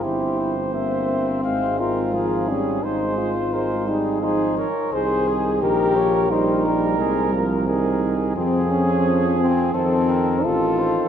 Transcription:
<<
  \new Staff \with { instrumentName = "Flugelhorn" } { \time 4/4 \key aes \major \tempo 4 = 87 g'8 c''4. c''8 bes'8 aes'4 | c''4 c''8 r8 aes'8 bes'8 c''8 aes'8 | bes'4 bes'2 aes'4 | \key f \minor aes'2 a'4 a'4 | }
  \new Staff \with { instrumentName = "Trumpet" } { \time 4/4 \key aes \major c''4 e''4 f''8 c''8 bes'8 aes'8 | c''4 bes'8 aes'8 c''8 des''8 c''8 r8 | bes'8 des''8 c''8 bes'8 aes'8 bes'4. | \key f \minor aes'2 a'8 bes'8 a'8 c''8 | }
  \new Staff \with { instrumentName = "French horn" } { \time 4/4 \key aes \major e'4 c'4. f'4 des'8 | ees'8 f'4 ees'8 ees'8 r8 aes'4 | g'4 ees'4. r4. | \key f \minor c'8 des'4 c'8 c'4 f'4 | }
  \new Staff \with { instrumentName = "Trombone" } { \clef bass \time 4/4 \key aes \major c'4 bes4 aes4 f8 g8 | aes4 aes8 g8 f8 r8 ees4 | ees8 f8 g8 g8 aes8 f8 ees4 | \key f \minor f2 ees4 ees4 | }
  \new Staff \with { instrumentName = "Bass trombone" } { \clef bass \time 4/4 \key aes \major g,,2 aes,,2 | aes,,2~ aes,,8 r8 c,4 | bes,,2 c,2 | \key f \minor f,2 f,4 a,,4 | }
>>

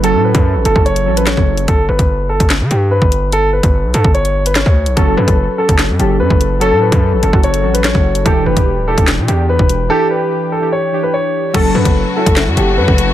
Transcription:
<<
  \new Staff \with { instrumentName = "Grand piano" } { \time 4/4 \key fis \phrygian \tempo 4 = 146 a'8 b'4 a'8 cis''8. b'16 cis''4 | a'8 b'4 a'8 r8 g'8 b'4 | a'8 b'4 a'8 cis''8. b'16 cis''4 | a'8 b'4 a'8 r8 g'8 b'4 |
a'8 b'4 a'8 cis''8. b'16 cis''4 | a'8 b'4 a'8 r8 g'8 b'4 | a'8 b'4 a'8 cis''8. b'16 cis''4 | a'8 b'4 a'8 r8 g'8 b'4 | }
  \new Staff \with { instrumentName = "Synth keys" } { \time 4/4 \key fis \phrygian <fis cis' a'>4~ <fis cis' a'>16 r8 <fis cis' a'>8 r16 <fis cis' a'>4~ <fis cis' a'>16 r16 | r1 | r1 | <fis cis' a'>8 r16 <fis cis' a'>8 r16 <fis cis' a'>8. r16 <fis cis' a'>4~ <fis cis' a'>16 r16 |
<fis cis' a'>4~ <fis cis' a'>16 r8 <fis cis' fis'>8 r16 <fis cis' a'>4~ <fis cis' a'>16 r16 | <e d' g'>8 r16 <e d' g'>8 r16 <e d' g'>8. r16 <e d' g'>4~ <e d' g'>16 r16 | <e d' g'>4~ <e d' g'>16 r8 <e d' g'>8 r16 <e d' g'>4~ <e d' g'>16 r16 | <fis cis' a'>8 r16 <fis cis' a'>8 r16 <fis cis' e'>8. r16 <fis cis' a'>4~ <fis cis' a'>16 r16 | }
  \new Staff \with { instrumentName = "String section" } { \clef bass \time 4/4 \key fis \phrygian r1 | r1 | r1 | r1 |
r1 | r1 | r1 | <cis fis a fis'>1 | }
  \new Staff \with { instrumentName = "808-style bass" } { \clef bass \time 4/4 \key fis \phrygian fis,,16 a,8 fis,8 a,,16 fis,,16 fis,,8. a,,8. fis,,8. | g,,8 g,,16 g,,8 fis,,16 g,,16 g,,8 d16 g,8. g,,8.~ | g,,8. g,,8 b,,16 g,16 g,,4. d,8 b,,16 | fis,,8 fis,16 fis,,8 r8 fis,,8 fis,16 fis,,8 fis,16 fis,,8.~ |
fis,,16 a,8 fis,8 a,,16 fis,,16 fis,,8. a,,8. fis,,8. | e,,8 e,,16 e,,8 d,,16 e,,16 e,,8 b,16 e,8. e,,8. | r1 | fis,,8 fis,16 fis,,8 r8 fis,,8 fis,16 fis,,8 fis,16 fis,,8. | }
  \new DrumStaff \with { instrumentName = "Drums" } \drummode { \time 4/4 hh8. <hh bd>16 r8 hh16 bd16 hh16 hh8 hh16 <hc hh sn>16 bd8 hh16 | <hh bd>8. <hh bd>16 r8. <hh bd>16 <hc hh sn>8 hh8 r16 bd16 hh8 | hh8. <hh bd>16 r8 hh16 bd16 hh16 hh8 hh16 <hc hh sn>16 bd8 hh16 | <hh bd>8. <hh bd>16 r8. <hh bd>16 <hc hh sn>8 hh8 r16 bd16 hh8 |
hh8. <hh bd>16 r8 hh16 bd16 hh16 hh8 hh16 <hc hh sn>16 bd8 hh16 | <hh bd>8. <hh bd>16 r8. <hh bd>16 <hc hh sn>8 hh8 r16 bd16 hh8 | r4 r4 r4 r4 | <cymc hh bd>8. <hh bd>16 r8. <hh bd>16 <hc hh sn>8 hh8 r16 bd16 hh8 | }
>>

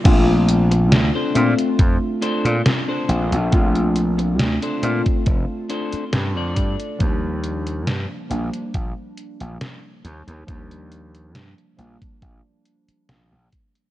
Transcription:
<<
  \new Staff \with { instrumentName = "Clean electric guitar" } { \time 4/4 \key bes \major \tempo 4 = 69 r4 r16 <d' a' c''>8. r8 <d' a' c''>8 r16 <d' a' c''>8. | r4 r16 <d' a' c''>8. r8 <d' a' c''>8 r16 <d' a' d''>8. | r1 | r1 | }
  \new Staff \with { instrumentName = "Synth keys" } { \time 4/4 \key bes \major <a c' d' f'>4. <a c' d' f'>2~ <a c' d' f'>8 | <a c' d' f'>4. <a c' d' f'>2~ <a c' d' f'>8 | <f g bes d'>4. <f g bes d'>2~ <f g bes d'>8 | <f g bes d'>4. <f g bes d'>2~ <f g bes d'>8 | }
  \new Staff \with { instrumentName = "Slap bass" } { \clef bass \time 4/4 \key bes \major bes,,4 d,16 r16 bes,16 r16 f,16 r8 bes,16 r8 bes,,16 bes,,16 | bes,,4 d,16 r16 bes,16 r16 f,,16 r8. g,16 f,16 g,16 r16 | ees,4 g,16 r16 bes,,16 r16 bes,,16 r8 bes,,16 r8 ees,16 ees,16 | ees,4 g,16 r16 bes,,16 r16 bes,,16 r8. bes,,16 bes,,16 r8 | }
  \new DrumStaff \with { instrumentName = "Drums" } \drummode { \time 4/4 <cymc hh bd>8 hh16 hh16 <hh sn>8 hh16 hh16 <hh bd>8 hh16 hh16 <hh sn>8 hh16 hh16 | <hh bd>16 hh16 hh16 hh16 <hh sn>16 hh16 hh16 <hh bd>16 <hh bd>8 hh16 hh16 <hh sn>8 <hh bd>16 hh16 | <hh bd>8 hh16 hh16 <hh sn>8 hh16 hh16 <hh bd>8 hh16 hh16 <hh sn>8 hh16 hh16 | <hh bd>16 hh16 hh16 hh16 <hh sn>16 hh16 hh16 <hh bd>16 <hh bd>8 hh16 hh16 <hh sn>8 <hh bd>16 hh16 | }
>>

